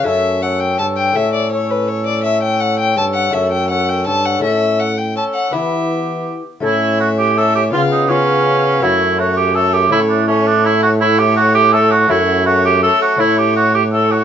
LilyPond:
<<
  \new Staff \with { instrumentName = "Violin" } { \time 3/4 \key a \mixolydian \tempo 4 = 165 e''4 fis''8 g''8 a''8 g''8 | e''8 d''8 cis''8 b'8 cis''8 d''8 | e''8 g''8 fis''8 g''8 a''8 fis''8 | e''8 g''8 fis''8 g''8 a''8 fis''8 |
e''4 fis''8 g''8 a''8 fis''8 | e''2 r4 | e''2 e''4 | eis''4 eis''2 |
cis''4 cis''4 cis''4 | cis''4 cis''2 | cis''2 cis''4 | cis''4 cis''4 cis''4 |
cis''2 cis''4 | }
  \new Staff \with { instrumentName = "Cor anglais" } { \time 3/4 \key a \mixolydian a'4 a'4 a'4 | a'4 a'2 | a'2 a'4 | a'4 a'4 a'4 |
a'4. r8 a'4 | g'2~ g'8 r8 | e'4 fis'8 g'8 a'8 g'8 | eis'8 dis'8 cis'2 |
e'4 fis'8 g'8 a'8 g'8 | e'8 d'8 cis'8 d'8 e'8 fis'8 | e'8 g'8 fis'8 g'8 a'8 fis'8 | e'4 fis'8 g'8 a'8 fis'8 |
e'8 g'8 fis'8 g'8 a'8 fis'8 | }
  \new Staff \with { instrumentName = "Bassoon" } { \time 3/4 \key a \mixolydian cis'4 cis'4 cis'4 | cis'4 cis'2 | cis'2 cis'4 | cis'4 cis'4 cis'4 |
cis'4. r8 cis'4 | b2~ b8 r8 | cis'2 cis'4 | b4 b2 |
a4 a4 a4 | a4 a2 | a2 a4 | a4 a4 a4 |
a4. r8 a4 | }
  \new Staff \with { instrumentName = "Lute" } { \time 3/4 \key a \mixolydian <a cis' a'>2. | <a cis' a'>2.~ | <a cis' a'>2. | <a cis' a'>2. |
<a cis' a'>2. | <b b'>2. | <a cis' a'>2. | <b cis' eis'>4 <b cis' eis'>2 |
<a cis' fis'>2. | <a cis' e'>2.~ | <a cis' e'>2. | <a cis' fis'>2. |
<a cis' e'>2. | }
  \new Staff \with { instrumentName = "Lute" } { \clef bass \time 3/4 \key a \mixolydian fis,2 g,4 | a,2.~ | a,2 g,4 | fis,2 g,4 |
a,2~ a,16 r8. | e2~ e8 r8 | a,2. | cis2. |
fis,2. | a,2.~ | a,2. | fis,2~ fis,16 r8. |
a,2. | }
  \new Staff \with { instrumentName = "Trombone" } { \clef bass \time 3/4 \key a \mixolydian fis,2 g,4 | a,2.~ | a,2 g,4 | fis,2 g,4 |
a,2~ a,16 r8. | e2~ e8 r8 | a,2. | cis2. |
fis,2. | a,2.~ | a,2. | fis,2~ fis,16 r8. |
a,2. | }
>>